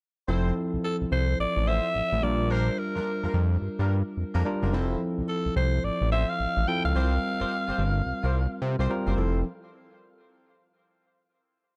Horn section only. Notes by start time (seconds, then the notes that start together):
0.28 C4 E4 F4 A4 C5
1.67 C4 E4 F4 A4 C5
2.50 A#3 D4 F4 G4 A#4
2.95 A#3 D4 F4 G4 A#4
3.23 A#3 D4 F4 G4 A#4
3.79 A#3 D4 F4 G4 A#4
4.34 A#3 D4 F4 G4 A#4
4.62 A#3 D4 F4 G4 A#4
4.72 C4 E4 F4 A4 C5
6.11 C4 E4 F4 A4 C5
6.95 C4 F4 G4 A#4 C5
7.40 C4 F4 G4 A#4 C5
7.67 C4 F4 G4 A#4 C5
8.23 C4 F4 G4 A#4 C5
8.78 C4 F4 G4 A#4 C5
9.06 C4 F4 G4 A#4 C5
9.16 C4 E4 F4 A4 C5